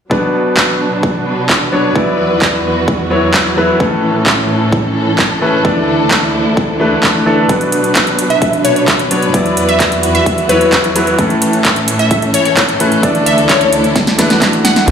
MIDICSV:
0, 0, Header, 1, 7, 480
1, 0, Start_track
1, 0, Key_signature, 3, "major"
1, 0, Tempo, 461538
1, 113, Time_signature, 4, 2, 24, 8
1, 15508, End_track
2, 0, Start_track
2, 0, Title_t, "Synth pluck"
2, 0, Program_c, 0, 84
2, 8634, Note_on_c, 0, 76, 87
2, 8770, Note_off_c, 0, 76, 0
2, 8992, Note_on_c, 0, 73, 88
2, 9070, Note_off_c, 0, 73, 0
2, 9113, Note_on_c, 0, 73, 69
2, 9190, Note_off_c, 0, 73, 0
2, 10073, Note_on_c, 0, 76, 85
2, 10210, Note_off_c, 0, 76, 0
2, 10553, Note_on_c, 0, 76, 87
2, 10690, Note_off_c, 0, 76, 0
2, 10912, Note_on_c, 0, 71, 90
2, 11393, Note_off_c, 0, 71, 0
2, 12473, Note_on_c, 0, 76, 86
2, 12610, Note_off_c, 0, 76, 0
2, 12833, Note_on_c, 0, 73, 86
2, 12910, Note_off_c, 0, 73, 0
2, 12952, Note_on_c, 0, 73, 70
2, 13030, Note_off_c, 0, 73, 0
2, 13793, Note_on_c, 0, 76, 88
2, 13930, Note_off_c, 0, 76, 0
2, 14032, Note_on_c, 0, 73, 84
2, 14110, Note_off_c, 0, 73, 0
2, 14152, Note_on_c, 0, 73, 75
2, 14229, Note_off_c, 0, 73, 0
2, 15232, Note_on_c, 0, 78, 86
2, 15473, Note_off_c, 0, 78, 0
2, 15508, End_track
3, 0, Start_track
3, 0, Title_t, "Supersaw synth"
3, 0, Program_c, 1, 81
3, 15472, Note_on_c, 1, 62, 70
3, 15473, Note_on_c, 1, 59, 75
3, 15473, Note_on_c, 1, 66, 80
3, 15508, Note_off_c, 1, 59, 0
3, 15508, Note_off_c, 1, 62, 0
3, 15508, Note_off_c, 1, 66, 0
3, 15508, End_track
4, 0, Start_track
4, 0, Title_t, "String section"
4, 0, Program_c, 2, 48
4, 114, Note_on_c, 2, 47, 74
4, 114, Note_on_c, 2, 71, 82
4, 115, Note_on_c, 2, 54, 68
4, 115, Note_on_c, 2, 62, 66
4, 2014, Note_off_c, 2, 47, 0
4, 2015, Note_off_c, 2, 54, 0
4, 2015, Note_off_c, 2, 62, 0
4, 2034, Note_on_c, 2, 40, 77
4, 2034, Note_on_c, 2, 52, 72
4, 2034, Note_on_c, 2, 66, 69
4, 3916, Note_off_c, 2, 71, 0
4, 3935, Note_off_c, 2, 40, 0
4, 3935, Note_off_c, 2, 66, 0
4, 3954, Note_on_c, 2, 45, 78
4, 3954, Note_on_c, 2, 61, 70
4, 3954, Note_on_c, 2, 69, 85
4, 5836, Note_off_c, 2, 52, 0
4, 5855, Note_off_c, 2, 45, 0
4, 5855, Note_off_c, 2, 61, 0
4, 5874, Note_on_c, 2, 64, 70
4, 5875, Note_on_c, 2, 38, 74
4, 5875, Note_on_c, 2, 50, 70
4, 7756, Note_off_c, 2, 69, 0
4, 7775, Note_off_c, 2, 38, 0
4, 7775, Note_off_c, 2, 50, 0
4, 7775, Note_off_c, 2, 64, 0
4, 7794, Note_on_c, 2, 47, 76
4, 7794, Note_on_c, 2, 62, 69
4, 7795, Note_on_c, 2, 54, 71
4, 7795, Note_on_c, 2, 71, 87
4, 9695, Note_off_c, 2, 47, 0
4, 9695, Note_off_c, 2, 54, 0
4, 9695, Note_off_c, 2, 62, 0
4, 9715, Note_on_c, 2, 40, 80
4, 9715, Note_on_c, 2, 52, 70
4, 9715, Note_on_c, 2, 66, 72
4, 11596, Note_off_c, 2, 71, 0
4, 11615, Note_off_c, 2, 40, 0
4, 11615, Note_off_c, 2, 66, 0
4, 11633, Note_on_c, 2, 61, 74
4, 11633, Note_on_c, 2, 69, 87
4, 11634, Note_on_c, 2, 45, 80
4, 13516, Note_off_c, 2, 52, 0
4, 13534, Note_off_c, 2, 45, 0
4, 13534, Note_off_c, 2, 61, 0
4, 13555, Note_on_c, 2, 38, 79
4, 13555, Note_on_c, 2, 50, 71
4, 13555, Note_on_c, 2, 64, 72
4, 15435, Note_off_c, 2, 69, 0
4, 15455, Note_off_c, 2, 38, 0
4, 15455, Note_off_c, 2, 50, 0
4, 15455, Note_off_c, 2, 64, 0
4, 15474, Note_on_c, 2, 71, 78
4, 15474, Note_on_c, 2, 74, 71
4, 15474, Note_on_c, 2, 78, 72
4, 15474, Note_on_c, 2, 86, 89
4, 15508, Note_off_c, 2, 71, 0
4, 15508, Note_off_c, 2, 74, 0
4, 15508, Note_off_c, 2, 78, 0
4, 15508, Note_off_c, 2, 86, 0
4, 15508, End_track
5, 0, Start_track
5, 0, Title_t, "Grand piano"
5, 0, Program_c, 3, 0
5, 101, Note_on_c, 3, 47, 64
5, 107, Note_on_c, 3, 54, 58
5, 113, Note_on_c, 3, 59, 62
5, 119, Note_on_c, 3, 62, 61
5, 126, Note_on_c, 3, 71, 73
5, 319, Control_c, 3, 64, 127
5, 1759, Note_off_c, 3, 47, 0
5, 1761, Note_off_c, 3, 54, 0
5, 1764, Note_off_c, 3, 59, 0
5, 1767, Note_off_c, 3, 62, 0
5, 1771, Note_off_c, 3, 71, 0
5, 1787, Note_on_c, 3, 54, 66
5, 1791, Note_on_c, 3, 59, 62
5, 1795, Note_on_c, 3, 62, 61
5, 1799, Note_on_c, 3, 73, 74
5, 2002, Note_off_c, 3, 54, 0
5, 2004, Note_off_c, 3, 59, 0
5, 2006, Note_off_c, 3, 62, 0
5, 2008, Note_off_c, 3, 73, 0
5, 2021, Note_on_c, 3, 54, 72
5, 2029, Note_on_c, 3, 59, 68
5, 2037, Note_on_c, 3, 64, 70
5, 2045, Note_on_c, 3, 74, 79
5, 2047, Control_c, 3, 64, 0
5, 2225, Control_c, 3, 64, 127
5, 3198, Note_off_c, 3, 54, 0
5, 3202, Note_off_c, 3, 59, 0
5, 3207, Note_off_c, 3, 64, 0
5, 3210, Note_off_c, 3, 74, 0
5, 3226, Note_on_c, 3, 54, 78
5, 3230, Note_on_c, 3, 59, 70
5, 3235, Note_on_c, 3, 64, 67
5, 3239, Note_on_c, 3, 73, 82
5, 3681, Note_off_c, 3, 54, 0
5, 3683, Note_off_c, 3, 59, 0
5, 3685, Note_off_c, 3, 64, 0
5, 3687, Note_off_c, 3, 73, 0
5, 3708, Note_on_c, 3, 54, 85
5, 3712, Note_on_c, 3, 59, 77
5, 3716, Note_on_c, 3, 64, 77
5, 3720, Note_on_c, 3, 71, 90
5, 3922, Note_off_c, 3, 54, 0
5, 3924, Note_off_c, 3, 59, 0
5, 3926, Note_off_c, 3, 64, 0
5, 3928, Note_off_c, 3, 71, 0
5, 3942, Note_on_c, 3, 45, 69
5, 3948, Note_on_c, 3, 52, 61
5, 3955, Note_on_c, 3, 57, 59
5, 3961, Note_on_c, 3, 61, 62
5, 3965, Control_c, 3, 64, 0
5, 3967, Note_on_c, 3, 69, 75
5, 4153, Control_c, 3, 64, 127
5, 5599, Note_off_c, 3, 45, 0
5, 5602, Note_off_c, 3, 52, 0
5, 5605, Note_off_c, 3, 57, 0
5, 5609, Note_off_c, 3, 61, 0
5, 5612, Note_off_c, 3, 69, 0
5, 5628, Note_on_c, 3, 52, 70
5, 5632, Note_on_c, 3, 57, 62
5, 5636, Note_on_c, 3, 61, 67
5, 5640, Note_on_c, 3, 71, 76
5, 5842, Note_off_c, 3, 52, 0
5, 5844, Note_off_c, 3, 57, 0
5, 5846, Note_off_c, 3, 61, 0
5, 5848, Note_off_c, 3, 71, 0
5, 5861, Note_on_c, 3, 52, 73
5, 5869, Note_on_c, 3, 57, 70
5, 5877, Note_on_c, 3, 62, 70
5, 5887, Control_c, 3, 64, 0
5, 5887, Note_on_c, 3, 74, 83
5, 6040, Control_c, 3, 64, 127
5, 7039, Note_off_c, 3, 52, 0
5, 7043, Note_off_c, 3, 57, 0
5, 7047, Note_off_c, 3, 62, 0
5, 7051, Note_off_c, 3, 74, 0
5, 7068, Note_on_c, 3, 52, 76
5, 7073, Note_on_c, 3, 57, 70
5, 7077, Note_on_c, 3, 62, 67
5, 7081, Note_on_c, 3, 71, 86
5, 7522, Note_off_c, 3, 52, 0
5, 7524, Note_off_c, 3, 57, 0
5, 7526, Note_off_c, 3, 62, 0
5, 7529, Note_off_c, 3, 71, 0
5, 7548, Note_on_c, 3, 52, 84
5, 7552, Note_on_c, 3, 57, 79
5, 7557, Note_on_c, 3, 62, 73
5, 7561, Note_on_c, 3, 69, 89
5, 7762, Note_off_c, 3, 52, 0
5, 7764, Note_off_c, 3, 57, 0
5, 7767, Note_off_c, 3, 62, 0
5, 7769, Note_off_c, 3, 69, 0
5, 7782, Note_on_c, 3, 47, 65
5, 7789, Note_on_c, 3, 54, 62
5, 7795, Note_on_c, 3, 59, 61
5, 7801, Note_on_c, 3, 62, 61
5, 7808, Control_c, 3, 64, 0
5, 7808, Note_on_c, 3, 71, 77
5, 7969, Control_c, 3, 64, 127
5, 9439, Note_off_c, 3, 47, 0
5, 9443, Note_off_c, 3, 54, 0
5, 9445, Note_off_c, 3, 59, 0
5, 9449, Note_off_c, 3, 62, 0
5, 9452, Note_off_c, 3, 71, 0
5, 9467, Note_on_c, 3, 54, 69
5, 9471, Note_on_c, 3, 59, 64
5, 9475, Note_on_c, 3, 62, 63
5, 9480, Note_on_c, 3, 73, 75
5, 9681, Note_off_c, 3, 54, 0
5, 9684, Note_off_c, 3, 59, 0
5, 9686, Note_off_c, 3, 62, 0
5, 9688, Note_off_c, 3, 73, 0
5, 9702, Note_on_c, 3, 54, 76
5, 9709, Note_on_c, 3, 59, 69
5, 9718, Note_on_c, 3, 64, 70
5, 9725, Control_c, 3, 64, 0
5, 9726, Note_on_c, 3, 74, 86
5, 9886, Control_c, 3, 64, 127
5, 10879, Note_off_c, 3, 54, 0
5, 10883, Note_off_c, 3, 59, 0
5, 10887, Note_off_c, 3, 64, 0
5, 10891, Note_off_c, 3, 74, 0
5, 10908, Note_on_c, 3, 54, 77
5, 10911, Note_on_c, 3, 59, 74
5, 10916, Note_on_c, 3, 64, 73
5, 10920, Note_on_c, 3, 73, 82
5, 11362, Note_off_c, 3, 54, 0
5, 11364, Note_off_c, 3, 59, 0
5, 11366, Note_off_c, 3, 64, 0
5, 11368, Note_off_c, 3, 73, 0
5, 11387, Note_on_c, 3, 54, 86
5, 11392, Note_on_c, 3, 59, 78
5, 11396, Note_on_c, 3, 64, 75
5, 11400, Note_on_c, 3, 71, 96
5, 11602, Note_off_c, 3, 54, 0
5, 11604, Note_off_c, 3, 59, 0
5, 11606, Note_off_c, 3, 64, 0
5, 11608, Note_off_c, 3, 71, 0
5, 11622, Note_on_c, 3, 45, 70
5, 11628, Note_on_c, 3, 52, 66
5, 11635, Note_on_c, 3, 57, 66
5, 11641, Note_on_c, 3, 61, 61
5, 11646, Control_c, 3, 64, 0
5, 11647, Note_on_c, 3, 69, 74
5, 11832, Control_c, 3, 64, 127
5, 13279, Note_off_c, 3, 45, 0
5, 13282, Note_off_c, 3, 52, 0
5, 13285, Note_off_c, 3, 57, 0
5, 13288, Note_off_c, 3, 61, 0
5, 13292, Note_off_c, 3, 69, 0
5, 13308, Note_on_c, 3, 52, 71
5, 13312, Note_on_c, 3, 57, 65
5, 13317, Note_on_c, 3, 61, 64
5, 13321, Note_on_c, 3, 71, 76
5, 13522, Note_off_c, 3, 52, 0
5, 13524, Note_off_c, 3, 57, 0
5, 13527, Note_off_c, 3, 61, 0
5, 13528, Note_off_c, 3, 71, 0
5, 13542, Note_on_c, 3, 52, 76
5, 13551, Note_on_c, 3, 57, 69
5, 13559, Note_on_c, 3, 62, 73
5, 13567, Control_c, 3, 64, 0
5, 13567, Note_on_c, 3, 74, 86
5, 13765, Control_c, 3, 64, 127
5, 14719, Note_off_c, 3, 52, 0
5, 14723, Note_off_c, 3, 57, 0
5, 14727, Note_off_c, 3, 62, 0
5, 14732, Note_off_c, 3, 74, 0
5, 14748, Note_on_c, 3, 52, 89
5, 14752, Note_on_c, 3, 57, 82
5, 14757, Note_on_c, 3, 62, 82
5, 14761, Note_on_c, 3, 71, 94
5, 14842, Note_off_c, 3, 52, 0
5, 14844, Note_off_c, 3, 57, 0
5, 14846, Note_off_c, 3, 62, 0
5, 14848, Note_off_c, 3, 71, 0
5, 14861, Note_on_c, 3, 52, 73
5, 14869, Note_on_c, 3, 57, 67
5, 14878, Note_on_c, 3, 62, 66
5, 14886, Note_on_c, 3, 66, 80
5, 15439, Note_off_c, 3, 52, 0
5, 15443, Note_off_c, 3, 57, 0
5, 15447, Note_off_c, 3, 62, 0
5, 15451, Note_off_c, 3, 66, 0
5, 15461, Note_on_c, 3, 47, 70
5, 15467, Note_on_c, 3, 54, 64
5, 15473, Note_on_c, 3, 59, 66
5, 15489, Control_c, 3, 64, 0
5, 15508, Note_off_c, 3, 47, 0
5, 15508, Note_off_c, 3, 54, 0
5, 15508, Note_off_c, 3, 59, 0
5, 15508, End_track
6, 0, Start_track
6, 0, Title_t, "Sub bass"
6, 0, Program_c, 4, 38
6, 15474, Note_on_c, 4, 35, 94
6, 15508, Note_off_c, 4, 35, 0
6, 15508, End_track
7, 0, Start_track
7, 0, Title_t, "Drums"
7, 113, Note_on_c, 9, 36, 103
7, 217, Note_off_c, 9, 36, 0
7, 594, Note_on_c, 9, 36, 97
7, 594, Note_on_c, 9, 39, 110
7, 698, Note_off_c, 9, 36, 0
7, 698, Note_off_c, 9, 39, 0
7, 1073, Note_on_c, 9, 36, 103
7, 1177, Note_off_c, 9, 36, 0
7, 1553, Note_on_c, 9, 36, 101
7, 1555, Note_on_c, 9, 39, 108
7, 1657, Note_off_c, 9, 36, 0
7, 1659, Note_off_c, 9, 39, 0
7, 2034, Note_on_c, 9, 36, 102
7, 2138, Note_off_c, 9, 36, 0
7, 2514, Note_on_c, 9, 36, 106
7, 2515, Note_on_c, 9, 39, 110
7, 2618, Note_off_c, 9, 36, 0
7, 2619, Note_off_c, 9, 39, 0
7, 2994, Note_on_c, 9, 36, 110
7, 3098, Note_off_c, 9, 36, 0
7, 3473, Note_on_c, 9, 36, 108
7, 3474, Note_on_c, 9, 39, 109
7, 3577, Note_off_c, 9, 36, 0
7, 3578, Note_off_c, 9, 39, 0
7, 3954, Note_on_c, 9, 36, 108
7, 4058, Note_off_c, 9, 36, 0
7, 4434, Note_on_c, 9, 36, 107
7, 4435, Note_on_c, 9, 39, 110
7, 4538, Note_off_c, 9, 36, 0
7, 4539, Note_off_c, 9, 39, 0
7, 4914, Note_on_c, 9, 36, 111
7, 5018, Note_off_c, 9, 36, 0
7, 5394, Note_on_c, 9, 36, 112
7, 5394, Note_on_c, 9, 39, 109
7, 5498, Note_off_c, 9, 36, 0
7, 5498, Note_off_c, 9, 39, 0
7, 5874, Note_on_c, 9, 36, 113
7, 5978, Note_off_c, 9, 36, 0
7, 6354, Note_on_c, 9, 36, 107
7, 6354, Note_on_c, 9, 39, 107
7, 6458, Note_off_c, 9, 36, 0
7, 6458, Note_off_c, 9, 39, 0
7, 6834, Note_on_c, 9, 36, 113
7, 6938, Note_off_c, 9, 36, 0
7, 7314, Note_on_c, 9, 36, 110
7, 7314, Note_on_c, 9, 39, 101
7, 7418, Note_off_c, 9, 36, 0
7, 7418, Note_off_c, 9, 39, 0
7, 7793, Note_on_c, 9, 42, 55
7, 7794, Note_on_c, 9, 36, 108
7, 7897, Note_off_c, 9, 42, 0
7, 7898, Note_off_c, 9, 36, 0
7, 7914, Note_on_c, 9, 42, 35
7, 8018, Note_off_c, 9, 42, 0
7, 8032, Note_on_c, 9, 42, 80
7, 8136, Note_off_c, 9, 42, 0
7, 8153, Note_on_c, 9, 42, 35
7, 8257, Note_off_c, 9, 42, 0
7, 8273, Note_on_c, 9, 39, 105
7, 8273, Note_on_c, 9, 42, 56
7, 8274, Note_on_c, 9, 36, 102
7, 8377, Note_off_c, 9, 39, 0
7, 8377, Note_off_c, 9, 42, 0
7, 8378, Note_off_c, 9, 36, 0
7, 8393, Note_on_c, 9, 42, 35
7, 8497, Note_off_c, 9, 42, 0
7, 8514, Note_on_c, 9, 42, 76
7, 8618, Note_off_c, 9, 42, 0
7, 8634, Note_on_c, 9, 42, 33
7, 8738, Note_off_c, 9, 42, 0
7, 8753, Note_on_c, 9, 42, 57
7, 8754, Note_on_c, 9, 36, 103
7, 8857, Note_off_c, 9, 42, 0
7, 8858, Note_off_c, 9, 36, 0
7, 8874, Note_on_c, 9, 42, 34
7, 8978, Note_off_c, 9, 42, 0
7, 8992, Note_on_c, 9, 42, 82
7, 9096, Note_off_c, 9, 42, 0
7, 9113, Note_on_c, 9, 42, 36
7, 9217, Note_off_c, 9, 42, 0
7, 9234, Note_on_c, 9, 36, 108
7, 9234, Note_on_c, 9, 39, 98
7, 9234, Note_on_c, 9, 42, 54
7, 9338, Note_off_c, 9, 36, 0
7, 9338, Note_off_c, 9, 39, 0
7, 9338, Note_off_c, 9, 42, 0
7, 9354, Note_on_c, 9, 42, 35
7, 9458, Note_off_c, 9, 42, 0
7, 9474, Note_on_c, 9, 42, 83
7, 9578, Note_off_c, 9, 42, 0
7, 9593, Note_on_c, 9, 42, 36
7, 9697, Note_off_c, 9, 42, 0
7, 9714, Note_on_c, 9, 36, 105
7, 9714, Note_on_c, 9, 42, 61
7, 9818, Note_off_c, 9, 36, 0
7, 9818, Note_off_c, 9, 42, 0
7, 9835, Note_on_c, 9, 42, 37
7, 9939, Note_off_c, 9, 42, 0
7, 9953, Note_on_c, 9, 42, 80
7, 10057, Note_off_c, 9, 42, 0
7, 10074, Note_on_c, 9, 42, 35
7, 10178, Note_off_c, 9, 42, 0
7, 10194, Note_on_c, 9, 36, 98
7, 10194, Note_on_c, 9, 42, 59
7, 10195, Note_on_c, 9, 39, 105
7, 10298, Note_off_c, 9, 36, 0
7, 10298, Note_off_c, 9, 42, 0
7, 10299, Note_off_c, 9, 39, 0
7, 10315, Note_on_c, 9, 42, 37
7, 10419, Note_off_c, 9, 42, 0
7, 10434, Note_on_c, 9, 42, 81
7, 10538, Note_off_c, 9, 42, 0
7, 10555, Note_on_c, 9, 42, 35
7, 10659, Note_off_c, 9, 42, 0
7, 10674, Note_on_c, 9, 36, 102
7, 10675, Note_on_c, 9, 42, 60
7, 10778, Note_off_c, 9, 36, 0
7, 10779, Note_off_c, 9, 42, 0
7, 10795, Note_on_c, 9, 42, 36
7, 10899, Note_off_c, 9, 42, 0
7, 10913, Note_on_c, 9, 42, 82
7, 11017, Note_off_c, 9, 42, 0
7, 11034, Note_on_c, 9, 42, 37
7, 11138, Note_off_c, 9, 42, 0
7, 11154, Note_on_c, 9, 36, 100
7, 11155, Note_on_c, 9, 39, 100
7, 11155, Note_on_c, 9, 42, 58
7, 11258, Note_off_c, 9, 36, 0
7, 11259, Note_off_c, 9, 39, 0
7, 11259, Note_off_c, 9, 42, 0
7, 11274, Note_on_c, 9, 42, 37
7, 11378, Note_off_c, 9, 42, 0
7, 11395, Note_on_c, 9, 42, 85
7, 11499, Note_off_c, 9, 42, 0
7, 11514, Note_on_c, 9, 42, 35
7, 11618, Note_off_c, 9, 42, 0
7, 11633, Note_on_c, 9, 42, 62
7, 11634, Note_on_c, 9, 36, 105
7, 11737, Note_off_c, 9, 42, 0
7, 11738, Note_off_c, 9, 36, 0
7, 11755, Note_on_c, 9, 42, 38
7, 11859, Note_off_c, 9, 42, 0
7, 11874, Note_on_c, 9, 42, 88
7, 11978, Note_off_c, 9, 42, 0
7, 11994, Note_on_c, 9, 42, 36
7, 12098, Note_off_c, 9, 42, 0
7, 12113, Note_on_c, 9, 42, 61
7, 12114, Note_on_c, 9, 36, 98
7, 12114, Note_on_c, 9, 39, 106
7, 12217, Note_off_c, 9, 42, 0
7, 12218, Note_off_c, 9, 36, 0
7, 12218, Note_off_c, 9, 39, 0
7, 12233, Note_on_c, 9, 42, 37
7, 12337, Note_off_c, 9, 42, 0
7, 12353, Note_on_c, 9, 42, 86
7, 12457, Note_off_c, 9, 42, 0
7, 12473, Note_on_c, 9, 42, 37
7, 12577, Note_off_c, 9, 42, 0
7, 12592, Note_on_c, 9, 42, 64
7, 12594, Note_on_c, 9, 36, 101
7, 12696, Note_off_c, 9, 42, 0
7, 12698, Note_off_c, 9, 36, 0
7, 12713, Note_on_c, 9, 42, 37
7, 12817, Note_off_c, 9, 42, 0
7, 12832, Note_on_c, 9, 42, 85
7, 12936, Note_off_c, 9, 42, 0
7, 12952, Note_on_c, 9, 42, 38
7, 13056, Note_off_c, 9, 42, 0
7, 13073, Note_on_c, 9, 39, 103
7, 13073, Note_on_c, 9, 42, 59
7, 13074, Note_on_c, 9, 36, 104
7, 13177, Note_off_c, 9, 39, 0
7, 13177, Note_off_c, 9, 42, 0
7, 13178, Note_off_c, 9, 36, 0
7, 13193, Note_on_c, 9, 42, 39
7, 13297, Note_off_c, 9, 42, 0
7, 13313, Note_on_c, 9, 42, 86
7, 13417, Note_off_c, 9, 42, 0
7, 13433, Note_on_c, 9, 42, 38
7, 13537, Note_off_c, 9, 42, 0
7, 13554, Note_on_c, 9, 36, 104
7, 13554, Note_on_c, 9, 42, 65
7, 13658, Note_off_c, 9, 36, 0
7, 13658, Note_off_c, 9, 42, 0
7, 13675, Note_on_c, 9, 42, 40
7, 13779, Note_off_c, 9, 42, 0
7, 13795, Note_on_c, 9, 42, 85
7, 13899, Note_off_c, 9, 42, 0
7, 13914, Note_on_c, 9, 42, 39
7, 14018, Note_off_c, 9, 42, 0
7, 14034, Note_on_c, 9, 36, 102
7, 14034, Note_on_c, 9, 39, 111
7, 14034, Note_on_c, 9, 42, 64
7, 14138, Note_off_c, 9, 36, 0
7, 14138, Note_off_c, 9, 39, 0
7, 14138, Note_off_c, 9, 42, 0
7, 14154, Note_on_c, 9, 42, 39
7, 14258, Note_off_c, 9, 42, 0
7, 14274, Note_on_c, 9, 42, 84
7, 14378, Note_off_c, 9, 42, 0
7, 14395, Note_on_c, 9, 42, 38
7, 14499, Note_off_c, 9, 42, 0
7, 14514, Note_on_c, 9, 36, 110
7, 14514, Note_on_c, 9, 38, 55
7, 14514, Note_on_c, 9, 42, 63
7, 14618, Note_off_c, 9, 36, 0
7, 14618, Note_off_c, 9, 38, 0
7, 14618, Note_off_c, 9, 42, 0
7, 14635, Note_on_c, 9, 38, 55
7, 14635, Note_on_c, 9, 42, 38
7, 14739, Note_off_c, 9, 38, 0
7, 14739, Note_off_c, 9, 42, 0
7, 14754, Note_on_c, 9, 38, 69
7, 14754, Note_on_c, 9, 42, 90
7, 14858, Note_off_c, 9, 38, 0
7, 14858, Note_off_c, 9, 42, 0
7, 14874, Note_on_c, 9, 38, 66
7, 14874, Note_on_c, 9, 42, 39
7, 14978, Note_off_c, 9, 38, 0
7, 14978, Note_off_c, 9, 42, 0
7, 14994, Note_on_c, 9, 36, 107
7, 14994, Note_on_c, 9, 38, 79
7, 14994, Note_on_c, 9, 42, 63
7, 14995, Note_on_c, 9, 39, 104
7, 15098, Note_off_c, 9, 36, 0
7, 15098, Note_off_c, 9, 38, 0
7, 15098, Note_off_c, 9, 42, 0
7, 15099, Note_off_c, 9, 39, 0
7, 15114, Note_on_c, 9, 42, 41
7, 15218, Note_off_c, 9, 42, 0
7, 15233, Note_on_c, 9, 38, 88
7, 15233, Note_on_c, 9, 42, 92
7, 15337, Note_off_c, 9, 38, 0
7, 15337, Note_off_c, 9, 42, 0
7, 15353, Note_on_c, 9, 38, 84
7, 15353, Note_on_c, 9, 42, 38
7, 15457, Note_off_c, 9, 38, 0
7, 15457, Note_off_c, 9, 42, 0
7, 15473, Note_on_c, 9, 39, 46
7, 15473, Note_on_c, 9, 42, 62
7, 15474, Note_on_c, 9, 36, 110
7, 15476, Note_on_c, 9, 82, 43
7, 15508, Note_off_c, 9, 36, 0
7, 15508, Note_off_c, 9, 39, 0
7, 15508, Note_off_c, 9, 42, 0
7, 15508, Note_off_c, 9, 82, 0
7, 15508, End_track
0, 0, End_of_file